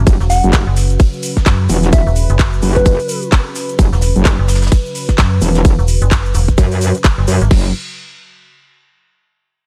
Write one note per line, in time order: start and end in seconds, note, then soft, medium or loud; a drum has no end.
0.00 7.47 C#3 medium
0.00 7.47 F#3 medium
0.07 0.18 F#1 medium
0.07 7.50 B4 medium
0.07 kick loud
0.07 closed hi-hat medium
0.07 ride medium
0.07 shaker medium
0.20 0.42 E1 loud
0.20 snare soft
0.20 shaker soft
0.30 0.45 F#5 medium
0.30 snare soft
0.30 open hi-hat loud
0.30 shaker medium
0.44 0.65 F#1 loud
0.44 closed hi-hat soft
0.44 shaker soft
0.52 kick loud
0.52 snare loud
0.52 clap loud
0.52 closed hi-hat medium
0.52 ride medium
0.52 shaker soft
0.52 shaker medium
0.67 0.98 F#1 loud
0.76 snare medium
0.76 open hi-hat loud
0.76 shaker medium
0.90 closed hi-hat soft
0.90 shaker soft
0.99 kick loud
0.99 closed hi-hat medium
0.99 open hi-hat medium
0.99 ride medium
0.99 shaker soft
1.13 shaker soft
1.23 open hi-hat loud
1.23 shaker medium
1.23 shaker loud
1.37 kick medium
1.37 snare medium
1.37 closed hi-hat medium
1.37 shaker soft
1.46 1.68 F#2 medium
1.46 kick loud
1.46 snare loud
1.46 clap loud
1.46 closed hi-hat medium
1.46 ride medium
1.46 shaker medium
1.69 2.04 E1 loud
1.69 open hi-hat loud
1.69 shaker medium
1.83 closed hi-hat medium
1.83 closed hi-hat soft
1.83 shaker soft
1.93 2.08 E5 medium
1.93 kick loud
1.93 closed hi-hat medium
1.93 ride medium
1.93 shaker medium
2.07 2.28 E1 loud
2.07 shaker soft
2.15 open hi-hat loud
2.15 shaker medium
2.29 2.61 F#1 loud
2.29 closed hi-hat medium
2.29 shaker soft
2.39 kick loud
2.39 snare loud
2.39 clap loud
2.39 closed hi-hat medium
2.39 ride medium
2.39 shaker soft
2.39 shaker medium
2.53 shaker soft
2.62 2.97 F#1 loud
2.62 open hi-hat loud
2.62 shaker medium
2.76 3.23 B4 loud
2.76 kick medium
2.76 closed hi-hat medium
2.76 closed hi-hat soft
2.76 shaker soft
2.86 kick loud
2.86 closed hi-hat medium
2.86 ride medium
2.86 shaker soft
2.86 shaker medium
2.99 open hi-hat medium
2.99 shaker soft
3.09 open hi-hat loud
3.09 shaker medium
3.22 closed hi-hat medium
3.22 shaker soft
3.31 kick loud
3.31 snare loud
3.31 clap loud
3.31 closed hi-hat medium
3.31 ride medium
3.31 shaker medium
3.31 shaker soft
3.46 closed hi-hat soft
3.55 snare soft
3.55 open hi-hat loud
3.55 shaker medium
3.69 closed hi-hat medium
3.69 shaker soft
3.79 3.90 F#1 loud
3.79 kick loud
3.79 closed hi-hat medium
3.79 ride medium
3.79 shaker medium
3.93 4.14 E1 loud
3.93 snare soft
3.93 shaker soft
4.01 snare soft
4.01 open hi-hat loud
4.01 shaker medium
4.16 4.37 F#1 loud
4.16 closed hi-hat medium
4.16 shaker soft
4.25 kick loud
4.25 snare loud
4.25 clap loud
4.25 closed hi-hat medium
4.25 ride medium
4.25 shaker soft
4.25 shaker medium
4.39 4.70 F#1 loud
4.48 snare loud
4.48 open hi-hat loud
4.48 shaker medium
4.55 snare loud
4.55 shaker medium
4.62 snare loud
4.62 closed hi-hat medium
4.62 shaker soft
4.62 shaker medium
4.67 snare loud
4.67 shaker medium
4.71 kick loud
4.71 closed hi-hat medium
4.71 open hi-hat medium
4.71 ride medium
4.71 shaker medium
4.86 shaker soft
4.95 open hi-hat loud
4.95 shaker medium
5.09 kick medium
5.09 snare medium
5.09 closed hi-hat medium
5.09 shaker soft
5.18 5.40 F#2 loud
5.18 kick loud
5.18 snare loud
5.18 clap loud
5.18 closed hi-hat medium
5.18 ride medium
5.18 shaker medium
5.41 5.76 E1 loud
5.41 open hi-hat loud
5.41 shaker medium
5.55 closed hi-hat soft
5.55 closed hi-hat medium
5.55 shaker soft
5.65 kick loud
5.65 closed hi-hat medium
5.65 ride medium
5.65 shaker medium
5.79 6.00 E1 loud
5.79 shaker soft
5.88 open hi-hat loud
5.88 shaker medium
6.02 6.33 F#1 loud
6.02 closed hi-hat medium
6.02 shaker soft
6.11 kick loud
6.11 snare loud
6.11 clap loud
6.11 closed hi-hat medium
6.11 ride medium
6.11 shaker medium
6.11 shaker soft
6.25 shaker soft
6.34 6.56 E1 loud
6.34 open hi-hat loud
6.34 shaker medium
6.48 kick medium
6.48 closed hi-hat medium
6.48 closed hi-hat soft
6.48 shaker soft
6.58 6.93 F#2 loud
6.58 kick loud
6.58 closed hi-hat medium
6.58 ride medium
6.58 shaker soft
6.58 shaker medium
6.71 open hi-hat medium
6.71 shaker soft
6.81 open hi-hat loud
6.81 shaker medium
6.95 closed hi-hat medium
6.95 shaker soft
7.04 kick loud
7.04 snare loud
7.04 clap loud
7.04 closed hi-hat medium
7.04 ride medium
7.04 shaker medium
7.04 shaker loud
7.18 7.26 F#1 loud
7.18 closed hi-hat soft
7.27 7.39 F#2 loud
7.27 snare soft
7.27 open hi-hat loud
7.27 shaker medium
7.41 7.49 G#1 loud
7.41 closed hi-hat medium
7.41 shaker soft
7.51 7.73 F#1 loud
7.51 7.72 C#3 medium
7.51 7.73 F#3 medium
7.51 kick loud
7.51 crash medium